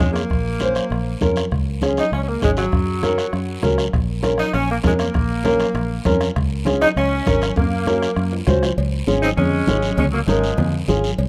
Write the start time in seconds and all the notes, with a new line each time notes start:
Already playing: G#3
0.00 F2 C#4 F4 G#4, bombo low, bombo rim, short guiro
0.13 A#3, bombo rim, short guiro
0.30 A#1, bombo low, bombo rim, high conga, long guiro
0.60 C#4 F4 C5, bombo rim, high conga, short guiro
0.75 bombo rim, short guiro
0.90 A#1, bombo rim, high conga, long guiro
1.21 F2 C#4 F4 A#4, bombo low, bombo rim, high conga, short guiro
1.36 bombo rim, short guiro
1.51 C#2, bombo low, bombo rim, high conga, long guiro
1.82 C#4 F4 G#4, bombo rim, high conga, short guiro
1.97 D#4, bombo rim, short guiro
2.12 C#2 C#4, bombo rim, high conga, long guiro
2.24 A#3 C#4
2.42 G#1 G#3 C#4 F4 G#4, bombo low, bombo rim, high conga, short guiro
2.57 F#3, bombo rim, short guiro
2.72 F#2, bombo low, bombo rim, high conga, long guiro
3.02 C#4 F#4 A#4, bombo rim, high conga, short guiro
3.18 bombo rim, short guiro
3.33 F#2, bombo rim, high conga, long guiro
3.62 C#2 C#4 F#4 A#4, bombo low, bombo rim, high conga, short guiro
3.78 bombo rim, short guiro
3.93 A#1, bombo low, bombo rim, high conga, high timbale, long guiro
4.22 C#4 F4 A#4, bombo rim, high conga, high timbale, short guiro
4.38 D#4, bombo rim, high timbale, short guiro
4.53 A#1 C#4, bombo rim, high conga, high timbale, long guiro
4.71 A#3
4.83 F2 G#3 C#4 F4 A#4, bombo low, bombo rim, high conga, high timbale, low timbale, short guiro
4.99 A#3, bombo rim, high timbale, short guiro
5.14 A#1, bombo low, bombo rim, high conga, high timbale, long guiro
5.44 C#4 F4 A#4, bombo rim, high conga, high timbale, short guiro
5.60 bombo rim, high timbale, short guiro
5.74 A#1, bombo rim, high conga, high timbale, long guiro
6.05 F2 C#4 F4 A#4, bombo low, bombo rim, high conga, high timbale, low timbale, short guiro
6.21 bombo rim, high timbale, short guiro
6.36 C#2, bombo low, bombo rim, high conga, high timbale, long guiro
6.65 C#4 F4 G#4, bombo rim, high conga, high timbale, short guiro
6.82 D#4, bombo rim, high timbale, short guiro
6.96 C#2 C#4, bombo rim, high conga, high timbale, long guiro
7.26 G#1 C#4 F4 A#4, bombo low, bombo rim, high conga, high timbale, short guiro
7.42 bombo rim, high timbale, short guiro
7.56 F#2 A#3, bombo low, bombo rim, high conga, high timbale, long guiro
7.86 C#4 F#4 A#4, bombo rim, high conga, short guiro
8.02 bombo rim, short guiro
8.16 F#2, bombo rim, high conga, long guiro
8.32 low timbale
8.47 C#2 C#4 F#4 C5, bombo low, bombo rim, high conga, low timbale, short guiro
8.63 bombo rim, low timbale, short guiro
8.78 C#2, cowbell, long guiro
9.07 G#1 C#4 F4 G#4, high conga, short guiro
9.22 C4 D#4, short guiro
9.37 F2 G#3 C#4, cowbell, low conga, long guiro
9.67 G#1 C#4 F4 G#4, high conga, low timbale, short guiro
9.82 short guiro
9.97 C#2 G#3 C#4, cowbell, low conga, long guiro
10.12 F#3 A#3
10.27 G#1 F3 G#3 C#4 F4 A#4, high conga, short guiro
10.44 short guiro
10.57 F2, cowbell, low conga, long guiro
10.88 G#1 C#4 F4 G#4, high conga, low timbale, short guiro
11.04 short guiro
11.18 C2, cowbell, long guiro